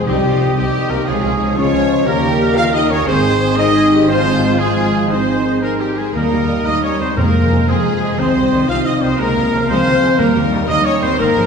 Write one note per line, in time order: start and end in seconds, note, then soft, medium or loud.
0.00 0.15 C4 medium
0.00 0.41 C5 medium
0.00 0.66 C6 medium
0.07 0.14 C2 medium
0.07 0.54 C3 loud
0.07 1.09 C3 medium
0.07 0.57 D#3 medium
0.07 0.56 G3 loud
0.07 0.56 C4 medium
0.07 0.23 C4 medium
0.07 0.24 D#4 medium
0.07 0.56 G4 medium
0.07 0.57 G4 medium
0.07 0.56 G4 medium
0.07 1.05 D#5 medium
0.24 0.31 C2 medium
0.24 0.40 F4 medium
0.24 0.31 G4 medium
0.34 1.09 D#4 medium
0.41 0.48 C2 medium
0.41 0.48 D#4 medium
0.41 1.07 G4 loud
0.57 0.64 C2 loud
0.57 1.07 D#3 medium
0.57 0.90 G3 loud
0.57 0.73 C4 medium
0.57 1.07 C4 medium
0.57 0.90 G4 loud
0.57 0.88 G4 medium
0.57 0.90 G4 medium
0.57 0.92 G4 loud
0.57 0.74 D#5 medium
0.67 0.82 C6 medium
0.75 0.89 D#5 medium
0.83 0.98 C6 medium
0.89 0.98 C2 medium
0.89 0.98 A#3 loud
0.89 0.97 D#4 medium
0.89 1.07 A#4 loud
0.89 1.06 A#4 loud
0.89 1.07 A#4 loud
1.07 1.14 C#2 loud
1.07 2.08 C#3 medium
1.07 1.56 F3 medium
1.07 1.23 G#3 medium
1.07 1.56 G#3 loud
1.07 1.56 G#3 medium
1.07 1.24 F4 medium
1.07 1.56 G#4 medium
1.07 1.58 G#4 loud
1.07 1.56 G#4 medium
1.07 1.58 G#4 medium
1.07 2.07 C#5 medium
1.16 2.09 C#4 medium
1.23 1.31 C#2 medium
1.23 2.09 F3 medium
1.23 1.31 F4 medium
1.23 1.40 G#4 medium
1.39 1.47 C#2 medium
1.39 1.47 C#4 medium
1.39 1.56 D#4 medium
1.39 2.09 G#4 medium
1.48 2.08 F4 medium
1.56 1.64 C#2 loud
1.56 2.06 F3 loud
1.56 1.73 G#3 loud
1.56 2.06 G#3 loud
1.56 2.06 C#4 loud
1.56 2.07 F4 medium
1.56 2.06 C#5 loud
1.56 1.72 F5 medium
1.64 1.80 G#5 medium
1.73 1.80 C#2 medium
1.73 1.81 F4 medium
1.81 1.98 G#5 medium
2.06 3.03 D#2 loud
2.06 3.09 D#3 loud
2.06 3.03 D#3 loud
2.06 3.03 G3 loud
2.06 2.57 A#3 loud
2.06 2.55 G4 loud
2.06 3.04 G4 loud
2.06 2.56 A#4 loud
2.06 2.57 A#4 loud
2.06 3.03 A#4 medium
2.06 2.56 A#4 loud
2.15 3.08 A#3 medium
2.23 3.32 D#4 medium
2.31 3.08 G4 medium
2.56 2.74 F4 loud
2.56 3.07 A#4 loud
2.56 2.73 F5 loud
2.56 2.65 F5 loud
2.56 2.64 F5 loud
2.56 2.74 F5 loud
2.73 2.91 D#4 loud
2.73 2.89 D#5 loud
2.73 2.90 D#5 loud
2.73 2.92 D#5 loud
2.73 2.91 D#5 medium
2.82 2.99 A#5 medium
2.90 2.98 C#4 loud
2.90 3.07 C#5 loud
2.90 3.08 C#5 loud
2.90 3.09 G5 medium
3.07 5.98 G#1 loud
3.07 4.07 G#2 loud
3.07 3.56 D#3 medium
3.07 3.57 G#3 medium
3.07 3.57 C4 loud
3.07 3.58 G#4 loud
3.07 3.57 G#4 loud
3.07 3.57 C5 loud
3.17 4.10 D#3 medium
3.25 4.25 G#3 medium
3.33 3.49 D#4 medium
3.50 4.10 D#4 medium
3.56 4.07 D#3 loud
3.56 4.07 G#3 loud
3.56 4.08 D#4 loud
3.56 4.08 G#4 loud
3.56 3.75 A#4 loud
3.56 3.90 D#5 loud
3.56 4.08 D#5 loud
3.56 3.90 D#5 loud
3.74 3.91 G#4 loud
3.91 4.08 G4 loud
4.00 4.68 G#5 medium
4.07 5.10 G#2 loud
4.07 4.59 F3 loud
4.07 4.59 G#3 loud
4.07 4.59 C4 loud
4.07 4.57 F4 loud
4.07 5.11 F4 loud
4.07 4.58 C5 loud
4.07 4.59 C5 loud
4.07 4.55 C5 loud
4.07 4.57 C5 loud
4.07 4.61 C5 loud
4.17 5.12 F3 medium
4.26 5.27 G#3 medium
4.34 4.50 F4 medium
4.51 5.13 F4 medium
4.58 5.10 F3 loud
4.58 4.95 G#3 loud
4.58 5.09 G#3 loud
4.58 5.09 F4 medium
4.58 5.10 G#4 loud
4.58 5.13 G#4 loud
4.58 5.12 G#4 loud
4.58 5.08 C5 medium
5.10 6.16 G#2 medium
5.10 5.97 D#3 medium
5.10 5.96 G#3 medium
5.10 5.61 C4 loud
5.10 5.89 D#4 medium
5.10 5.59 G#4 medium
5.10 5.58 C5 medium
5.10 5.61 C5 loud
5.10 5.64 C5 medium
5.10 5.62 C5 medium
5.10 5.64 C5 loud
5.20 6.14 D#3 medium
5.28 6.16 G#3 medium
5.46 6.16 G#4 medium
5.55 6.31 D#4 medium
5.62 5.79 A#3 medium
5.62 5.79 G#4 medium
5.62 5.82 A#4 medium
5.62 5.70 A#4 medium
5.62 5.79 A#4 loud
5.62 5.80 A#4 loud
5.78 5.96 G3 loud
5.78 5.97 G4 medium
5.78 5.99 G4 medium
5.78 5.98 G4 medium
5.78 5.87 A#4 medium
5.78 5.97 D#5 medium
5.90 6.06 G#5 medium
5.97 6.15 G#3 medium
5.97 6.15 G#4 medium
5.97 6.05 G#4 medium
5.97 6.15 G#4 medium
5.97 6.14 C5 medium
6.07 6.17 G#5 medium
6.13 6.21 D#2 medium
6.13 7.19 D#3 medium
6.13 6.63 G3 medium
6.13 6.31 A#3 loud
6.13 6.65 A#3 loud
6.13 6.65 A#4 loud
6.13 6.68 A#4 loud
6.13 6.66 A#4 loud
6.13 6.65 A#4 loud
6.13 7.14 D#5 medium
6.24 7.19 G3 medium
6.32 6.39 D#2 medium
6.32 7.19 D#4 medium
6.32 6.40 G4 medium
6.48 6.57 D#2 medium
6.48 6.55 D#3 medium
6.48 6.55 G3 medium
6.48 6.56 D#4 medium
6.48 7.18 G4 medium
6.57 7.18 D#5 medium
6.66 6.74 D#2 medium
6.66 7.16 G3 loud
6.66 6.82 A#3 loud
6.66 6.83 D#4 medium
6.66 6.83 D#5 loud
6.66 6.74 D#5 loud
6.66 6.83 D#5 loud
6.75 6.90 G5 medium
6.83 7.00 C#4 loud
6.83 7.00 C#5 medium
6.83 7.00 C#5 loud
6.83 7.00 C#5 medium
6.83 7.00 A#5 medium
6.98 7.07 D#2 medium
6.98 7.06 D#3 medium
6.98 7.05 G3 medium
6.98 7.08 C4 loud
6.98 7.07 D#4 medium
6.98 7.17 C5 medium
6.98 7.08 C5 loud
6.98 7.17 C5 loud
6.98 7.18 C5 medium
7.10 7.19 G5 medium
7.16 7.65 F2 loud
7.16 7.24 F2 medium
7.16 8.21 F3 medium
7.16 7.67 G#3 loud
7.16 7.67 A#3 loud
7.16 7.33 C4 loud
7.16 7.67 A#4 loud
7.16 7.69 A#4 loud
7.16 7.67 A#4 loud
7.16 7.68 A#4 loud
7.16 8.19 C5 medium
7.27 8.21 G#3 medium
7.34 7.42 F2 medium
7.34 7.41 G#4 medium
7.44 8.20 F4 medium
7.51 7.58 F2 medium
7.51 7.57 C3 medium
7.51 7.57 G#3 medium
7.51 7.58 F4 medium
7.51 8.20 G#4 medium
7.68 7.75 F2 medium
7.68 8.18 F3 loud
7.68 8.18 G#3 loud
7.68 7.84 C4 loud
7.68 8.18 G#4 loud
7.68 8.20 G#4 medium
7.68 8.18 G#4 loud
7.68 8.21 G#4 loud
7.85 7.92 F2 medium
7.85 7.92 G#4 medium
7.85 8.00 F5 medium
8.01 8.07 C3 medium
8.01 8.08 G#3 medium
8.01 8.20 F5 medium
8.18 8.26 C2 loud
8.18 9.21 C3 medium
8.18 8.35 D#3 medium
8.18 8.34 C4 loud
8.18 8.69 C4 loud
8.18 8.68 C5 loud
8.18 8.69 C5 loud
8.18 9.20 D#5 medium
8.27 9.21 G3 medium
8.35 8.43 C2 medium
8.35 8.52 G3 medium
8.35 8.43 G4 medium
8.52 8.60 C2 medium
8.52 8.69 D#3 loud
8.52 8.58 D#3 medium
8.52 8.58 G3 medium
8.52 8.60 D#4 medium
8.52 9.21 G4 medium
8.68 8.76 C2 loud
8.68 9.67 C3 medium
8.68 8.86 C4 medium
8.68 8.85 F4 loud
8.68 8.86 F5 loud
8.68 8.87 F5 loud
8.68 8.77 F5 loud
8.77 8.93 G5 medium
8.85 9.02 D#4 loud
8.85 9.02 D#5 medium
8.85 9.01 D#5 medium
8.85 9.03 D#5 loud
8.85 8.94 D#5 medium
8.94 9.09 G5 medium
9.01 9.10 C2 medium
9.01 9.08 D#3 medium
9.01 9.08 G3 medium
9.01 9.19 C4 loud
9.01 9.10 D#4 medium
9.01 9.20 C5 loud
9.01 9.19 C5 loud
9.01 9.21 C5 loud
9.11 9.21 G5 medium
9.18 9.26 C#2 loud
9.18 9.35 G#3 loud
9.18 9.68 A#3 loud
9.18 9.68 A#4 loud
9.18 9.69 A#4 loud
9.18 10.19 F5 loud
9.27 10.20 G#3 medium
9.36 9.42 C#2 medium
9.36 10.21 F3 medium
9.36 9.43 F4 medium
9.45 9.59 F4 medium
9.51 9.59 C#2 medium
9.51 9.58 F3 medium
9.51 9.58 G#3 medium
9.51 9.59 C#4 medium
9.51 10.21 G#4 medium
9.61 10.20 F4 medium
9.68 9.75 C#2 loud
9.68 9.85 F3 loud
9.68 9.85 G#3 loud
9.68 10.19 C4 loud
9.68 10.17 C5 loud
9.68 10.18 C5 loud
9.68 10.21 C5 loud
9.85 9.92 C#2 medium
9.85 9.92 D#3 loud
9.85 9.93 F4 medium
9.93 10.08 G#5 medium
10.01 10.08 F3 loud
10.01 10.08 F3 medium
10.01 10.08 G#3 loud
10.01 10.20 F5 medium
10.17 10.25 D#2 loud
10.17 11.20 D#3 medium
10.17 11.17 G3 loud
10.17 10.68 A#3 loud
10.17 10.35 A#3 loud
10.17 10.50 A#4 loud
10.17 10.68 A#4 loud
10.17 10.69 A#4 loud
10.17 11.17 A#4 medium
10.17 10.52 A#4 loud
10.26 11.20 G3 medium
10.35 10.42 D#2 medium
10.35 10.50 D#4 medium
10.35 10.42 G4 medium
10.43 11.20 G4 medium
10.51 10.59 D#2 medium
10.51 10.58 D#3 loud
10.51 10.57 G3 loud
10.51 11.43 D#4 medium
10.51 10.59 D#4 medium
10.60 10.76 D#5 medium
10.68 10.75 D#2 loud
10.68 10.84 A#3 loud
10.68 10.85 D#4 loud
10.68 10.87 D#5 loud
10.68 10.86 D#5 loud
10.68 10.85 D#5 loud
10.68 10.88 D#5 loud
10.84 11.02 C#4 loud
10.84 11.01 C#5 loud
10.84 10.92 C#5 loud
10.84 11.04 C#5 loud
10.84 11.02 G5 medium
11.00 11.09 D#2 medium
11.00 11.07 D#3 loud
11.00 11.07 G3 medium
11.00 11.19 C4 loud
11.00 11.08 D#4 medium
11.00 11.18 C5 loud
11.00 11.19 C5 loud
11.00 11.21 G5 medium
11.17 11.26 G#1 loud
11.17 11.46 G#2 loud
11.17 11.35 D#3 loud
11.17 11.46 A#3 loud
11.17 11.34 C4 loud
11.17 11.46 A#4 loud
11.17 11.46 C5 loud
11.28 11.46 D#3 medium
11.35 11.42 G#1 medium
11.35 11.42 F3 loud
11.35 11.46 G#3 medium
11.35 11.42 G#4 medium